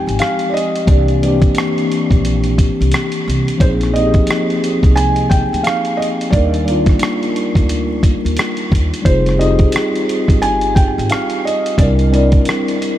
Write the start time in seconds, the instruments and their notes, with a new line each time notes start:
Already playing: tine electric piano F3 G#3 C4 D#4 G4, felt piano G5
0.07 upright bass G#1, closed hi-hat
0.19 felt piano F5, cross-stick, closed hi-hat
0.39 closed hi-hat
0.49 felt piano D5
0.54 felt piano D#5, closed hi-hat
0.76 closed hi-hat
0.86 upright bass C2, tine electric piano E3 A#3 C4, felt piano D5, kick, closed hi-hat
0.90 tine electric piano D4 G4
1.08 closed hi-hat
1.22 tine electric piano E3 A#3 C4, felt piano D5, closed hi-hat
1.27 tine electric piano D4 G4
1.42 kick, closed hi-hat
1.55 cross-stick, closed hi-hat
1.78 closed hi-hat
1.92 closed hi-hat
2.11 upright bass A#1, kick, closed hi-hat
2.25 closed hi-hat
2.44 closed hi-hat
2.58 kick, closed hi-hat
2.81 upright bass C2, closed hi-hat
2.92 cross-stick, closed hi-hat
3.12 closed hi-hat
3.28 upright bass C2, closed hi-hat
3.48 closed hi-hat
3.58 upright bass A#1, tine electric piano F3 A#3 C4, felt piano C5, kick, closed hi-hat
3.62 tine electric piano D#4 G#4
3.81 cross-stick, closed hi-hat
3.93 tine electric piano F3 A#3 C4, felt piano D#5, closed hi-hat
3.98 tine electric piano D#4 G4
4.06 tine electric piano G#4
4.14 kick, closed hi-hat
4.27 cross-stick, closed hi-hat
4.50 closed hi-hat
4.64 closed hi-hat
4.83 upright bass C2, kick, closed hi-hat
4.96 felt piano G#5, closed hi-hat
5.16 closed hi-hat
5.30 felt piano G5, kick, closed hi-hat
5.53 upright bass D2, closed hi-hat
5.63 felt piano F5, cross-stick, closed hi-hat
5.85 closed hi-hat
5.97 felt piano D#5
6.02 closed hi-hat
6.21 closed hi-hat
6.30 upright bass D#2, tine electric piano G3 A#3 D4, felt piano D5, kick, closed hi-hat
6.35 tine electric piano D#4 A#4
6.54 closed hi-hat
6.65 tine electric piano G3 A#3 D4, felt piano D5, closed hi-hat
6.70 tine electric piano D#4 F4
6.86 kick, cross-stick, closed hi-hat
6.99 cross-stick, closed hi-hat
7.23 closed hi-hat
7.36 closed hi-hat
7.55 upright bass D2, kick, closed hi-hat
7.69 closed hi-hat
8.03 kick, closed hi-hat
8.25 upright bass D#2, closed hi-hat
8.37 cross-stick, closed hi-hat
8.57 closed hi-hat
8.72 upright bass D#2, kick, closed hi-hat
8.94 closed hi-hat
9.02 upright bass F1, tine electric piano G3 C4 D#4, felt piano C5, kick, closed hi-hat
9.07 tine electric piano F4 G#4
9.26 cross-stick, closed hi-hat
9.37 tine electric piano C4 D#4 G4, felt piano D#5, closed hi-hat
9.42 tine electric piano F4 G#4
9.59 kick, closed hi-hat
9.72 cross-stick, closed hi-hat
9.96 closed hi-hat
10.09 closed hi-hat
10.28 upright bass G1, kick, closed hi-hat
10.42 felt piano G#5, closed hi-hat
10.61 closed hi-hat
10.75 felt piano G5, kick, closed hi-hat
10.98 upright bass G#1, closed hi-hat
11.10 felt piano F5, cross-stick, closed hi-hat
11.30 closed hi-hat
11.45 felt piano D#5, closed hi-hat
11.66 closed hi-hat
11.77 upright bass C2, tine electric piano G3 C4 D4, felt piano D5, kick, closed hi-hat
11.81 tine electric piano E4 A#4
11.99 closed hi-hat
12.10 tine electric piano G3 C4 D4, felt piano D5, closed hi-hat
12.14 tine electric piano E4 A#4
12.32 kick, closed hi-hat
12.45 cross-stick, closed hi-hat
12.68 closed hi-hat
12.82 closed hi-hat